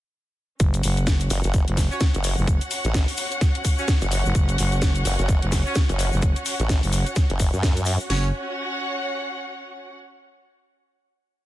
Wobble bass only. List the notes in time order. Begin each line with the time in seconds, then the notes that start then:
1.30 F#1
1.44 F#1
2.14 F#1
2.85 A1
4.02 F#1
5.05 F#1
5.19 F#1
5.89 F#1
6.60 A1
7.30 F#1
7.53 F#2